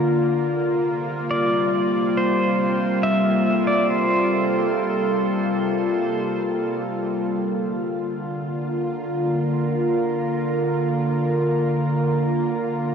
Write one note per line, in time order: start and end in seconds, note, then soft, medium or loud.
0.00 0.46 D3 medium
0.00 0.46 A#3 medium
0.00 7.30 A#3 medium
0.00 7.31 F4 medium
0.00 12.95 F4 medium
0.00 0.45 A#4 medium
0.43 7.30 C3 medium
0.65 7.33 G3 medium
1.31 2.17 D5 medium
2.17 3.05 C5 medium
2.96 7.32 A4 medium
3.03 3.67 E5 medium
3.67 3.89 D5 medium
3.90 6.42 C5 medium
7.31 12.95 D3 medium
7.31 12.95 A#3 medium
7.31 12.95 F4 medium
8.21 12.95 A#4 medium
8.64 12.95 A#3 medium